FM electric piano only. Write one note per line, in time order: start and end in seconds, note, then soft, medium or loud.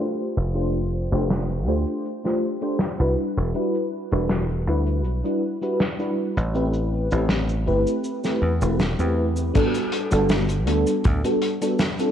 0.00 0.50 A3 medium
0.00 0.50 D4 medium
0.00 0.50 F4 medium
0.00 0.51 G4 medium
0.00 0.51 C5 medium
0.54 1.07 A3 medium
0.54 1.07 D4 medium
0.54 1.07 F4 medium
0.54 1.07 G4 medium
0.54 1.08 C5 medium
1.11 1.43 A3 medium
1.11 1.43 D4 medium
1.11 1.43 F4 medium
1.11 1.43 G4 medium
1.11 1.44 C5 medium
1.67 2.19 A3 medium
1.67 2.20 D4 medium
1.67 2.20 F4 medium
1.67 2.20 G4 medium
1.67 2.20 C5 medium
2.24 2.57 A3 medium
2.24 2.57 D4 medium
2.24 2.57 F4 medium
2.24 2.58 G4 medium
2.24 2.58 C5 medium
2.61 2.80 A3 medium
2.61 2.80 D4 medium
2.61 2.81 F4 medium
2.61 2.81 G4 medium
2.61 2.81 C5 medium
2.98 3.50 G3 medium
2.98 3.50 D4 medium
2.98 3.50 E4 medium
2.98 3.51 F#4 medium
2.98 3.51 B4 medium
3.54 4.07 G3 medium
3.54 4.07 D4 medium
3.54 4.07 E4 medium
3.54 4.07 F#4 medium
3.54 4.08 B4 medium
4.11 4.43 G3 medium
4.11 4.43 D4 medium
4.11 4.43 E4 medium
4.11 4.43 F#4 medium
4.11 4.44 B4 medium
4.67 5.19 G3 medium
4.67 5.20 D4 medium
4.67 5.20 E4 medium
4.67 5.20 F#4 medium
4.67 5.20 B4 medium
5.24 5.57 G3 medium
5.24 5.57 D4 medium
5.24 5.57 E4 medium
5.24 5.57 F#4 medium
5.24 5.58 B4 medium
5.61 5.80 G3 medium
5.61 5.81 D4 medium
5.61 5.81 E4 medium
5.61 5.81 F#4 medium
5.61 5.81 B4 medium
5.99 6.50 G3 medium
5.99 6.50 D4 medium
5.99 6.50 E4 medium
5.99 6.51 F#4 medium
5.99 6.51 B4 medium
6.54 7.07 A3 medium
6.54 7.07 C4 medium
6.54 7.07 E4 medium
6.54 7.07 G4 medium
6.54 7.08 B4 medium
7.11 7.43 A3 medium
7.11 7.43 C4 medium
7.11 7.43 E4 medium
7.11 7.43 G4 medium
7.11 7.43 B4 medium
7.66 8.19 A3 medium
7.66 8.19 C4 medium
7.66 8.20 E4 medium
7.66 8.20 G4 medium
7.66 8.20 B4 medium
8.24 8.57 A3 medium
8.24 8.57 C4 medium
8.24 8.57 E4 medium
8.24 8.57 G4 medium
8.24 8.58 B4 medium
8.61 8.80 A3 medium
8.61 8.80 C4 medium
8.61 8.81 E4 medium
8.61 8.81 G4 medium
8.61 8.81 B4 medium
8.99 9.50 A3 medium
8.99 9.50 C4 medium
8.99 9.51 E4 medium
8.99 9.51 G4 medium
8.99 9.51 B4 medium
9.54 10.07 G3 medium
9.54 10.07 B3 medium
9.54 10.07 D4 medium
9.54 10.07 F#4 medium
9.54 10.08 A4 medium
10.11 10.43 G3 medium
10.11 10.43 B3 medium
10.11 10.43 D4 medium
10.11 10.43 F#4 medium
10.11 10.43 A4 loud
10.66 11.19 G3 medium
10.66 11.19 B3 medium
10.66 11.20 D4 medium
10.66 11.20 F#4 medium
10.66 11.20 A4 loud
11.24 11.57 G3 medium
11.24 11.57 B3 medium
11.24 11.57 D4 medium
11.24 11.57 F#4 medium
11.24 11.58 A4 medium
11.61 11.80 G3 medium
11.61 11.81 B3 medium
11.61 11.81 D4 medium
11.61 11.81 F#4 medium
11.61 11.81 A4 loud
11.99 12.12 G3 medium
11.99 12.12 C4 medium
11.99 12.12 D4 medium
11.99 12.12 F4 medium
11.99 12.12 A4 medium